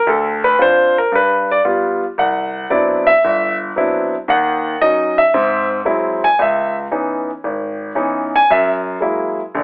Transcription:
grand piano
0.07 D2 A4
0.44 B4
0.59 C4 D4 F4 C5
0.98 A#4
1.12 G2 B4
1.51 D5
1.65 G3 B3 F4
2.18 C2 F#5
2.70 F#3 B3 C4 D4 E4 D5
3.07 E5
3.25 G1
3.76 F#3 B3 C4 D4 E4
4.28 D#2 D#3 F#5
4.81 F#3 C#4 D#4 D#5
5.18 E5
5.34 G#2 C4
5.85 F#3 G#3 C4 E4
6.24 G#5
6.39 C#2 E5
6.91 E3 B3 C#4 D#4
7.44 G#1
7.95 E3 B3 C#4 D#4
8.36 G#5
8.51 F#2 E5
9.01 F#3 G#3 A#3 E4
9.54 A#1 D3

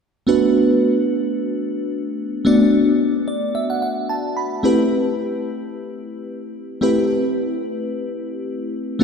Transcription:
fm electric piano
0.27 A3 B3 D4 F#4 B4
2.45 A3 B3 D4 F#4 D5
3.28 D5
3.55 E5
3.70 F#5
3.82 F#5
4.09 A5
4.37 B5
4.63 A3 C4 E4 G4 B4
6.81 A3 C4 E4 G4 B4
8.99 A3 B3 D4

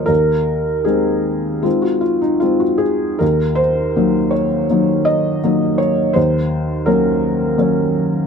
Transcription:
felt piano
Already playing: F3 A#3 F4 A#4 C5 C#5 D#5
0.06 D#2 A#4
0.84 G#3 C4 D#4 G#4
1.63 G#3 C4 D#4 F4
1.82 F#4
2.01 F4
2.22 D#4
2.40 G#3 C4 D#4 F4
2.60 F#4
2.78 G#4
3.19 D#2 A#4
3.55 C5
3.96 F#3 A#3 D#4
4.31 C#5
4.70 F#3 A#3 D#4
5.05 D#5
5.44 F#3 A#3 D#4
5.78 C#5
6.13 D#2 C5
6.86 F#3 A#3 C#4 A#4
7.58 F#3 A#3 C#4

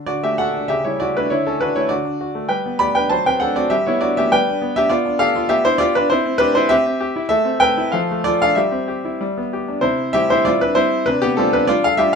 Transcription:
grand piano
0.06 D3 F#4 D5
0.23 A3 G4 E5
0.38 F#4 A4 F#5
0.54 D4
0.68 C#3 G4 E5
0.85 G3 E4 C#5
1.00 E4 F#4 D5
1.17 A3 D4 B4
1.30 D3 E4 C#5
1.46 C#4 D4 A4
1.60 D4 F#4 B4
1.76 A3 E4 C#5
1.89 D3 F#4 D5
2.05 D4
2.21 F#4
2.35 A3
2.49 G3 B4 G5
2.66 B3
2.79 G4 D5 B5
2.95 D4 B4 G5
3.10 F#3 C5 A5
3.26 C4 B4 G5
3.40 D4 A4 F#5
3.56 C4 F#4 D5
3.70 G3 G4 E5
3.87 B3 E4 C#5
4.01 D4 F#4 D5
4.17 B3 G4 E5
4.32 G3 B4 G5
4.48 D4
4.62 B3
4.76 D4 G4 E5
4.89 B3 F4 D5
5.05 D4
5.19 G4 A4 F5
5.36 F4
5.49 B3 G4 E5
5.65 D4 E4 C5
5.78 F4 G4 D5
5.95 D4 F4 B4
6.10 C4 E4 C5
6.26 C4
6.38 D4 G4 B4
6.55 E4 C5
6.69 C4 G4 E5
6.86 C4
7.01 G4
7.16 E4
7.29 A3 A4 E5
7.45 C4
7.60 A4 B4 G5
7.78 E4
7.92 F3 A4 F5
8.11 A3
8.24 F4 A4 D5
8.41 D4 A4 F5
8.55 G3 G4 E5
8.72 C4
8.88 G4
9.05 E4
9.21 G3
9.37 B3
9.53 G4
9.68 D4
9.81 C3 E4 C5
10.13 G3 C4 E4 G4 E5
10.30 E4 C5
10.45 G3 C4 E4 F4 D5
10.61 D4 B4
10.75 G3 C4 E4 C5
11.06 C3 D4 B4
11.22 B3 G4
11.37 G3 C4 D4 F4 A4
11.53 D4 B4
11.67 G3 D4 F4 D5
11.84 A4 F5
11.97 G3 D4 F4 G4 E5

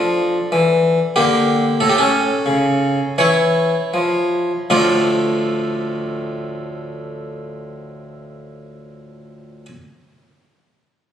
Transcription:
harpsichord
Already playing: F3 D4 A4
0.52 E3
1.16 D3 A#3 G4
1.80 A2 A4
1.90 G4
1.98 C#4 A4
2.46 C#3
3.18 E3 E4 C#5
3.94 F3
4.70 D2 A2 F3 A3 D4 F4 D5

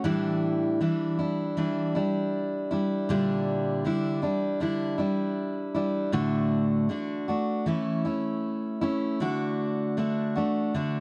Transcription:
steel-string acoustic guitar
0.04 A2 E3 G3 D4 E4
0.81 E3 G3 D4 E4
1.19 G3 D4 E4
1.57 E3 G3 D4 E4
1.95 G3 D4 E4
2.71 G3 D4 E4
3.09 A#2 D3 G3 D4 E4
3.84 D3 G3 D4 E4
4.22 G3 D4 E4
4.60 D3 G3 D4 E4
4.98 G3 D4 E4
5.74 G3 D4 E4
6.12 A2 D3 A3 D4 F#4
6.89 D3 A3 D4 F#4
7.28 A3 D4 F#4
7.66 E3 A3 C#4 E4
8.05 A3 C#4 E4
8.81 A3 C#4 E4
9.20 D3 A3 D4 F#4
9.97 D3 A3 D4 F#4
10.36 A3 D4 F#4
10.74 D3 A3 D4 F#4

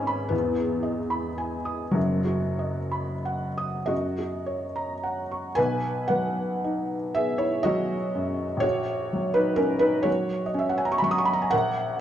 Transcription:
felt piano
Already playing: G#1 G#2 C#4 D#4 G#4 B4 G#5 B5
0.07 B5
0.29 E2 B3
0.56 G#4
0.83 D#5
1.10 B5
1.38 G#5
1.65 D#6
1.91 F#1 F#2 F#3
2.25 F#4
2.59 D#5
2.92 B5
3.25 F#5
3.58 D#6
3.86 F#2 F#4 D#5
4.19 F#4
4.46 C#5
4.76 A#5
5.04 F#5
5.31 C#6
5.55 B1 B4 G#5
6.08 F#3 B4 F#5
6.64 D#4
7.15 B3 G#4 E5
7.38 E4 C#5
7.63 F#3 F#4 D#5
8.15 F#2
8.57 A#1 C#5
8.62 F#4
9.13 F#3
9.34 D#4 B4
9.56 C#4 A#4
9.79 D#4 B4
10.03 F#3 F#4 C#5
10.46 D#5
10.54 C#4
10.59 E5
10.69 F#5
10.78 G#5
10.85 A#5
10.92 C#6
10.98 F#3 B5
11.04 C#6
11.11 D#6
11.18 C#6
11.25 B5
11.33 A#5
11.42 G#5
11.51 A#1 A#4 F#5

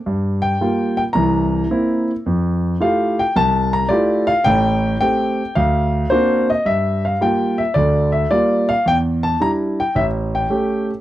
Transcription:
grand piano
0.06 G2
0.42 G5
0.61 G3 A#3 F4
0.97 G5
1.13 C2 E3 A#5
1.71 A#3 C4 E4
2.26 F2
2.80 A3 E4 F4 G4 F5
3.19 G5
3.36 C2 A5
3.73 A#5
3.89 A3 E4 F4 G4 D5
4.27 F5
4.44 A1 A2 G5
5.01 A3 C4 G4 G5
5.55 D2 F5
6.10 A#3 C4 D4 F#4 C5
6.50 D#5
6.65 G2 E5
7.05 F5
7.21 G3 A#3 F4 G5
7.58 E5
7.74 D2 D3 D5
8.12 E5
8.30 G3 A#3 F4 D5
8.69 F5
8.86 E2 G5
9.23 A5
9.40 G3 D4 E4 A#5
9.80 G5
9.95 A1 E5
10.35 G5
10.50 A3 C#4 G4

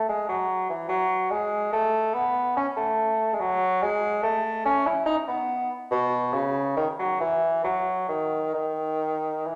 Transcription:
bassoon
0.09 G#3
0.29 F#3
0.69 E3
0.89 F#3
1.31 G#3
1.73 A3
2.14 B3
2.57 C#4
2.77 A3
3.34 G#3
3.40 F#3
3.82 G#3
4.23 A3
4.65 C#4
4.86 E4
5.06 D#4
5.28 B3
5.91 B2
6.33 C#3
6.77 D#3
6.99 F#3
7.20 E3
7.64 F#3
8.09 D#3
8.54 D#3
9.46 E3

